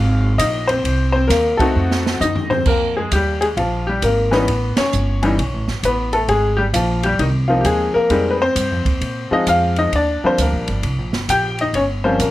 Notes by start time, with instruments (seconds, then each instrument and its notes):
Already playing: upright bass G#1, upright piano F#3 G#3 F4 F5
0.38 upright bass A#1, upright piano D#4 D#5, kick, hi-hat pedal, ride
0.67 upright piano C4 C5, ride
0.84 upright bass C2, kick, ride
1.12 upright piano C4 C5
1.28 upright bass D#2, upright piano A#3 A#4, kick, snare, hi-hat pedal, ride
1.57 upright piano A3 C4 F#4 A4, muted upright bass stroke, kick, ride
1.62 upright piano D#4
1.76 upright bass F2
1.91 snare
2.07 snare
2.21 upright bass F#2, upright piano D#4 D#5, floor tom, hi-hat pedal
2.36 floor tom
2.50 upright piano C4 C5, floor tom
2.66 upright bass F2, upright piano A#4, kick, crash
2.70 upright piano A#3
2.97 upright piano G#3 G#4
3.12 upright bass D#2, upright piano G3 G4, kick, hi-hat pedal, ride
3.41 upright piano G#3 G#4, ride
3.57 upright bass A#1, upright piano F3 F4, kick, ride
3.87 upright piano G3 G4
4.02 upright bass G#1, upright piano A#3 A#4, kick, hi-hat pedal, ride
4.31 upright piano E3 G3 B3 C#4 D#4 B4, snare
4.48 upright bass A1, kick, ride
4.77 upright piano C#4 C#5, muted upright bass stroke, snare, ride
4.93 upright bass G1, hi-hat pedal
5.23 upright piano E3 G3 C#4 D#4, ride
5.38 upright bass B1, kick, ride
5.53 upright bass A1
5.68 upright bass G1, snare
5.83 upright bass A1, upright piano B3 B4, kick, hi-hat pedal, ride
6.13 upright piano A3 A4, ride
6.28 upright bass G#1, upright piano G#3 G#4, kick, ride
6.57 upright piano G3 G4
6.73 upright bass A#1, upright piano F3 F4, kick, hi-hat pedal, ride
7.03 upright piano G3 G4, ride
7.19 upright bass C2, upright piano D#3 D#4, kick, ride
7.48 upright piano F3 A#3 C4 D#4 F4
7.61 upright bass D#2, upright piano G4, kick, hi-hat pedal, ride
7.66 upright piano G#3 G#4
7.94 upright piano A#3 A#4, muted upright bass stroke
8.10 upright bass F2, upright piano G3 G#3 C4 D#4, kick, ride
8.31 upright piano B4
8.42 upright piano C4 C5
8.55 upright bass G2, kick, hi-hat pedal, ride
8.71 upright bass F2
8.85 upright bass D#2, kick, ride
9.01 upright bass A#2, kick, ride
9.31 upright piano F3 G#3 C4 D#4 F4 D#5, muted upright bass stroke
9.47 upright bass F2, upright piano F4 F5, kick, hi-hat pedal, ride
9.76 upright piano D#4 D#5, ride
9.92 upright bass D#2, upright piano D4 D5, kick, ride
10.23 upright piano F3 G3 A#3 C4 D4 C5, muted upright bass stroke
10.38 upright bass D2, upright piano A#3 A#4, kick, hi-hat pedal, ride
10.52 upright bass A#1
10.68 upright bass G1, ride
10.83 upright bass C2, kick, ride
10.98 upright bass A#1
11.13 upright bass G1, snare
11.28 upright bass A#1, upright piano G4 G5, kick, hi-hat pedal, ride
11.58 upright piano D#4 D#5, ride
11.73 upright bass G1, upright piano C#4 C#5, kick, ride
12.04 upright piano F3 G3 A#3 C4 C#4 C5
12.19 upright bass A#1, upright piano A#3 A#4, kick, hi-hat pedal, ride